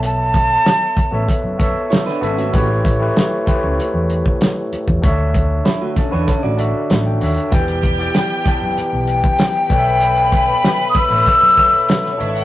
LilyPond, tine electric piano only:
\new Staff \with { instrumentName = "Tine electric piano" } { \time 4/4 \key b \minor \tempo 4 = 96 << { r1 | r1 | r2 r8 e''8 fis''16 g''16 a''8 | r1 |
r1 | } \\ { <b fis' a' cis'' e''>4~ <b fis' a' cis'' e''>16 r8 <b fis' a' cis'' e''>8. <b fis' a' cis'' e''>4 <b fis' a' cis'' e''>8 | <a e' g' b' cis''>8. <a e' g' b' cis''>8. <a e' g' b' c'' cis''>4.~ <a e' g' b' c'' cis''>16 r8. | <d d' fis' cis'' e''>4. r16 <d d' fis' cis'' fis''>8. <d d' fis' d''>4 <d d' fis' cis'' e''>8 | <e b g' d'' g''>8. <e b g' d'' g''>8. <e b g' d'' a''>4.~ <e b g' d'' a''>16 r16 <b, b a' cis'' d'' e''>8~ |
<b, b a' cis'' d'' e''>4~ <b, b a' cis'' d'' e''>16 r8 <b, b a' cis'' e''>8. <b, b a' cis'' e''>4 <b, b a' cis'' e''>8 | } >> }